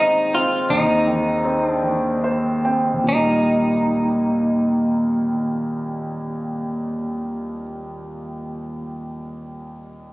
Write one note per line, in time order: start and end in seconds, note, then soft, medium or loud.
0.00 0.64 G#2 soft
0.00 1.07 D#3 soft
0.00 0.32 C4 soft
0.00 0.35 D#4 medium
0.33 1.43 C4 soft
0.33 0.71 F4 medium
0.69 2.92 D#2 soft
0.69 1.67 D#4 medium
1.07 1.82 D#3 soft
1.45 2.63 C4 soft
1.67 2.19 D4 medium
1.83 3.05 D#3 soft
2.24 2.62 C5 soft
2.65 3.07 C4 soft
2.65 3.05 G5 soft
2.93 7.50 D#2 soft
3.04 7.61 A#2 soft
3.09 7.66 D#4 soft
3.13 7.70 G3 soft
3.23 7.80 A#3 soft